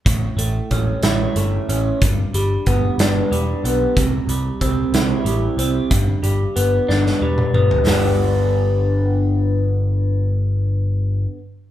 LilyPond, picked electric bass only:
\new Staff \with { instrumentName = "Picked electric bass" } { \clef bass \time 6/8 \key g \major \tempo 4. = 61 a,,8 a,,8 a,,8 a,,8 g,,8 a,,8 | g,,8 g,,8 g,,8 g,,8 e,,8 b,,8 | c,8 c,8 c,8 c,8 a,,8 c,8 | g,,8 g,,8 g,,8 g,,8 e,,8 g,,8 |
g,,2.~ | g,,2. | }